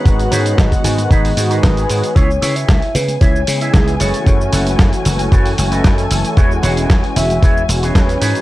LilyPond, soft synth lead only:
\new Staff \with { instrumentName = "Soft synth lead" } { \time 4/4 \key e \major \tempo 4 = 114 b'8 cis''8 dis''2 b'4 | cis''8. e''8. b'8 cis''4 r8 cis''8~ | cis''4 r2. | r4. e''4 r8 cis''4 | }